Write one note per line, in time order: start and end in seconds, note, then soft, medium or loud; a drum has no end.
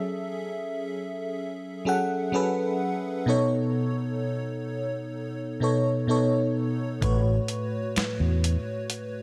0.00 1.10 F#3 medium
0.00 1.10 C#4 medium
0.00 1.11 G#4 medium
0.00 1.11 A4 medium
0.00 1.12 E5 loud
1.85 2.26 F#3 medium
1.85 2.26 C#4 medium
1.85 2.26 G#4 medium
1.85 2.27 A4 medium
1.85 2.27 F#5 medium
2.32 3.12 F#3 medium
2.32 3.13 C#4 medium
2.32 3.13 G#4 medium
2.32 3.13 A4 medium
2.32 3.14 B4 loud
3.26 4.85 B2 medium
3.26 4.85 B3 medium
3.26 4.86 D#4 medium
3.26 4.86 A4 medium
3.26 4.87 C#5 loud
5.60 6.01 B2 medium
5.60 6.01 B3 medium
5.60 6.01 D#4 medium
5.60 6.02 A4 medium
5.60 6.02 C#5 medium
6.07 6.87 B2 medium
6.07 6.88 B3 medium
6.07 6.88 D#4 medium
6.07 6.88 A4 medium
6.07 6.89 C#5 medium
7.01 7.38 A1 loud
7.01 8.60 A2 medium
7.01 8.60 A3 medium
7.01 8.61 F#4 medium
7.01 8.61 B4 medium
7.01 8.62 C#5 medium
7.01 kick loud
7.01 closed hi-hat medium
7.48 closed hi-hat medium
7.96 muted fingered electric bass stroke soft
7.96 snare loud
7.96 closed hi-hat medium
8.20 8.55 E2 medium
8.44 closed hi-hat medium
8.90 closed hi-hat medium